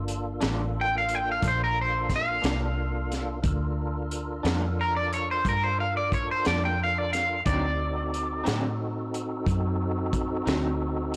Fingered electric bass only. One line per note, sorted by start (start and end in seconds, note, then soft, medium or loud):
0.00 0.39 G1 medium
0.42 1.40 A1 medium
1.43 2.40 A#1 medium
2.44 3.41 C2 medium
3.44 4.41 D2 medium
4.45 5.42 F2 medium
5.45 6.42 G2 medium
6.47 7.43 F2 medium
7.46 8.43 D2 medium
8.47 9.44 A2 medium
9.47 10.43 F#2 medium
10.47 11.16 D2 medium